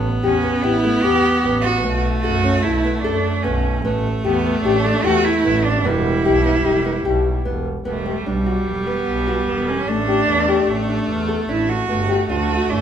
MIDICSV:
0, 0, Header, 1, 5, 480
1, 0, Start_track
1, 0, Tempo, 401606
1, 2200, Time_signature, 5, 2, 24, 8
1, 15314, End_track
2, 0, Start_track
2, 0, Title_t, "Cello"
2, 0, Program_c, 0, 42
2, 292, Note_on_c, 0, 61, 75
2, 749, Note_on_c, 0, 64, 79
2, 767, Note_off_c, 0, 61, 0
2, 1230, Note_on_c, 0, 67, 93
2, 1247, Note_off_c, 0, 64, 0
2, 1715, Note_off_c, 0, 67, 0
2, 1931, Note_on_c, 0, 66, 88
2, 2389, Note_off_c, 0, 66, 0
2, 2648, Note_on_c, 0, 66, 82
2, 3138, Note_on_c, 0, 64, 74
2, 3156, Note_off_c, 0, 66, 0
2, 3547, Note_off_c, 0, 64, 0
2, 3547, Note_on_c, 0, 64, 59
2, 3603, Note_on_c, 0, 62, 74
2, 3621, Note_off_c, 0, 64, 0
2, 4093, Note_on_c, 0, 61, 65
2, 4111, Note_off_c, 0, 62, 0
2, 4463, Note_off_c, 0, 61, 0
2, 5074, Note_on_c, 0, 59, 76
2, 5519, Note_off_c, 0, 59, 0
2, 5547, Note_on_c, 0, 62, 85
2, 6026, Note_on_c, 0, 66, 98
2, 6044, Note_off_c, 0, 62, 0
2, 6269, Note_on_c, 0, 64, 93
2, 6287, Note_off_c, 0, 66, 0
2, 6755, Note_on_c, 0, 62, 79
2, 6773, Note_off_c, 0, 64, 0
2, 7002, Note_on_c, 0, 64, 85
2, 7020, Note_off_c, 0, 62, 0
2, 8918, Note_off_c, 0, 64, 0
2, 9419, Note_on_c, 0, 57, 66
2, 9889, Note_on_c, 0, 55, 65
2, 9907, Note_off_c, 0, 57, 0
2, 10358, Note_on_c, 0, 54, 64
2, 10376, Note_off_c, 0, 55, 0
2, 10598, Note_on_c, 0, 59, 78
2, 10616, Note_off_c, 0, 54, 0
2, 11195, Note_off_c, 0, 59, 0
2, 11203, Note_on_c, 0, 59, 77
2, 11576, Note_on_c, 0, 61, 76
2, 11594, Note_off_c, 0, 59, 0
2, 11807, Note_on_c, 0, 62, 82
2, 11825, Note_off_c, 0, 61, 0
2, 13248, Note_off_c, 0, 62, 0
2, 13730, Note_on_c, 0, 64, 81
2, 13976, Note_on_c, 0, 66, 90
2, 13994, Note_off_c, 0, 64, 0
2, 14688, Note_off_c, 0, 66, 0
2, 14695, Note_on_c, 0, 66, 81
2, 15175, Note_on_c, 0, 62, 78
2, 15193, Note_off_c, 0, 66, 0
2, 15314, Note_off_c, 0, 62, 0
2, 15314, End_track
3, 0, Start_track
3, 0, Title_t, "Nylon-string guitar"
3, 0, Program_c, 1, 24
3, 280, Note_on_c, 1, 67, 70
3, 413, Note_off_c, 1, 67, 0
3, 519, Note_on_c, 1, 59, 65
3, 652, Note_off_c, 1, 59, 0
3, 760, Note_on_c, 1, 67, 68
3, 892, Note_off_c, 1, 67, 0
3, 1003, Note_on_c, 1, 57, 61
3, 1134, Note_off_c, 1, 57, 0
3, 1243, Note_on_c, 1, 67, 76
3, 1505, Note_off_c, 1, 67, 0
3, 1725, Note_on_c, 1, 59, 71
3, 1985, Note_off_c, 1, 59, 0
3, 2199, Note_on_c, 1, 59, 81
3, 2461, Note_off_c, 1, 59, 0
3, 2677, Note_on_c, 1, 69, 70
3, 2808, Note_off_c, 1, 69, 0
3, 2915, Note_on_c, 1, 61, 63
3, 3047, Note_off_c, 1, 61, 0
3, 3158, Note_on_c, 1, 69, 67
3, 3289, Note_off_c, 1, 69, 0
3, 3402, Note_on_c, 1, 59, 68
3, 3532, Note_off_c, 1, 59, 0
3, 3637, Note_on_c, 1, 69, 78
3, 3899, Note_off_c, 1, 69, 0
3, 4114, Note_on_c, 1, 59, 73
3, 4376, Note_off_c, 1, 59, 0
3, 4596, Note_on_c, 1, 59, 79
3, 4858, Note_off_c, 1, 59, 0
3, 5074, Note_on_c, 1, 67, 69
3, 5205, Note_off_c, 1, 67, 0
3, 5320, Note_on_c, 1, 59, 62
3, 5449, Note_off_c, 1, 59, 0
3, 5558, Note_on_c, 1, 67, 71
3, 5687, Note_off_c, 1, 67, 0
3, 5798, Note_on_c, 1, 57, 69
3, 5927, Note_off_c, 1, 57, 0
3, 6030, Note_on_c, 1, 67, 82
3, 6293, Note_off_c, 1, 67, 0
3, 6512, Note_on_c, 1, 59, 71
3, 6774, Note_off_c, 1, 59, 0
3, 6988, Note_on_c, 1, 59, 84
3, 7252, Note_off_c, 1, 59, 0
3, 7473, Note_on_c, 1, 67, 70
3, 7604, Note_off_c, 1, 67, 0
3, 7714, Note_on_c, 1, 59, 63
3, 7845, Note_off_c, 1, 59, 0
3, 7948, Note_on_c, 1, 67, 66
3, 8081, Note_off_c, 1, 67, 0
3, 8182, Note_on_c, 1, 59, 68
3, 8316, Note_off_c, 1, 59, 0
3, 8426, Note_on_c, 1, 67, 73
3, 8691, Note_off_c, 1, 67, 0
3, 8908, Note_on_c, 1, 59, 70
3, 9172, Note_off_c, 1, 59, 0
3, 9385, Note_on_c, 1, 59, 69
3, 9519, Note_off_c, 1, 59, 0
3, 9630, Note_on_c, 1, 67, 59
3, 9763, Note_off_c, 1, 67, 0
3, 9876, Note_on_c, 1, 62, 57
3, 10007, Note_off_c, 1, 62, 0
3, 10115, Note_on_c, 1, 66, 58
3, 10378, Note_off_c, 1, 66, 0
3, 10601, Note_on_c, 1, 59, 62
3, 10863, Note_off_c, 1, 59, 0
3, 11084, Note_on_c, 1, 66, 61
3, 11214, Note_off_c, 1, 66, 0
3, 11327, Note_on_c, 1, 59, 63
3, 11588, Note_off_c, 1, 59, 0
3, 11808, Note_on_c, 1, 57, 70
3, 11938, Note_off_c, 1, 57, 0
3, 12048, Note_on_c, 1, 67, 58
3, 12178, Note_off_c, 1, 67, 0
3, 12292, Note_on_c, 1, 62, 62
3, 12421, Note_off_c, 1, 62, 0
3, 12530, Note_on_c, 1, 67, 58
3, 12791, Note_off_c, 1, 67, 0
3, 13010, Note_on_c, 1, 62, 63
3, 13272, Note_off_c, 1, 62, 0
3, 13488, Note_on_c, 1, 69, 65
3, 13619, Note_off_c, 1, 69, 0
3, 13731, Note_on_c, 1, 62, 62
3, 13993, Note_off_c, 1, 62, 0
3, 14211, Note_on_c, 1, 59, 71
3, 14341, Note_off_c, 1, 59, 0
3, 14447, Note_on_c, 1, 67, 65
3, 14579, Note_off_c, 1, 67, 0
3, 14695, Note_on_c, 1, 62, 62
3, 14824, Note_off_c, 1, 62, 0
3, 14933, Note_on_c, 1, 66, 61
3, 15195, Note_off_c, 1, 66, 0
3, 15314, End_track
4, 0, Start_track
4, 0, Title_t, "Viola"
4, 0, Program_c, 2, 41
4, 0, Note_on_c, 2, 59, 96
4, 2184, Note_on_c, 2, 57, 90
4, 2202, Note_off_c, 2, 59, 0
4, 4581, Note_off_c, 2, 57, 0
4, 4588, Note_on_c, 2, 57, 98
4, 6988, Note_on_c, 2, 55, 79
4, 7006, Note_off_c, 2, 57, 0
4, 9152, Note_off_c, 2, 55, 0
4, 9393, Note_on_c, 2, 55, 87
4, 11800, Note_on_c, 2, 57, 96
4, 11818, Note_off_c, 2, 55, 0
4, 14201, Note_off_c, 2, 57, 0
4, 14208, Note_on_c, 2, 57, 91
4, 15314, Note_off_c, 2, 57, 0
4, 15314, End_track
5, 0, Start_track
5, 0, Title_t, "Double bass"
5, 0, Program_c, 3, 43
5, 289, Note_on_c, 3, 40, 81
5, 737, Note_off_c, 3, 40, 0
5, 769, Note_on_c, 3, 33, 78
5, 1216, Note_off_c, 3, 33, 0
5, 1246, Note_on_c, 3, 40, 80
5, 1469, Note_off_c, 3, 40, 0
5, 1718, Note_on_c, 3, 33, 82
5, 2196, Note_on_c, 3, 35, 93
5, 2214, Note_off_c, 3, 33, 0
5, 2422, Note_off_c, 3, 35, 0
5, 2679, Note_on_c, 3, 42, 83
5, 3128, Note_off_c, 3, 42, 0
5, 3155, Note_on_c, 3, 35, 75
5, 3605, Note_off_c, 3, 35, 0
5, 3631, Note_on_c, 3, 42, 80
5, 3858, Note_off_c, 3, 42, 0
5, 4114, Note_on_c, 3, 35, 85
5, 4588, Note_on_c, 3, 33, 96
5, 4606, Note_off_c, 3, 35, 0
5, 4815, Note_off_c, 3, 33, 0
5, 5073, Note_on_c, 3, 40, 82
5, 5523, Note_off_c, 3, 40, 0
5, 5555, Note_on_c, 3, 33, 85
5, 6003, Note_off_c, 3, 33, 0
5, 6029, Note_on_c, 3, 40, 82
5, 6255, Note_off_c, 3, 40, 0
5, 6510, Note_on_c, 3, 33, 87
5, 6992, Note_on_c, 3, 28, 100
5, 7010, Note_off_c, 3, 33, 0
5, 7217, Note_off_c, 3, 28, 0
5, 7472, Note_on_c, 3, 35, 81
5, 7922, Note_off_c, 3, 35, 0
5, 7955, Note_on_c, 3, 28, 85
5, 8404, Note_off_c, 3, 28, 0
5, 8433, Note_on_c, 3, 35, 87
5, 8658, Note_off_c, 3, 35, 0
5, 8913, Note_on_c, 3, 28, 74
5, 9364, Note_off_c, 3, 28, 0
5, 9390, Note_on_c, 3, 28, 75
5, 9843, Note_off_c, 3, 28, 0
5, 9870, Note_on_c, 3, 35, 73
5, 10324, Note_off_c, 3, 35, 0
5, 10364, Note_on_c, 3, 28, 68
5, 10812, Note_off_c, 3, 28, 0
5, 10842, Note_on_c, 3, 35, 72
5, 11292, Note_off_c, 3, 35, 0
5, 11328, Note_on_c, 3, 28, 74
5, 11776, Note_off_c, 3, 28, 0
5, 11797, Note_on_c, 3, 33, 78
5, 12251, Note_off_c, 3, 33, 0
5, 12287, Note_on_c, 3, 40, 85
5, 12737, Note_off_c, 3, 40, 0
5, 12764, Note_on_c, 3, 33, 70
5, 13216, Note_off_c, 3, 33, 0
5, 13246, Note_on_c, 3, 40, 79
5, 13697, Note_off_c, 3, 40, 0
5, 13729, Note_on_c, 3, 33, 77
5, 14179, Note_off_c, 3, 33, 0
5, 14214, Note_on_c, 3, 31, 80
5, 14662, Note_off_c, 3, 31, 0
5, 14690, Note_on_c, 3, 38, 84
5, 15140, Note_off_c, 3, 38, 0
5, 15167, Note_on_c, 3, 31, 74
5, 15314, Note_off_c, 3, 31, 0
5, 15314, End_track
0, 0, End_of_file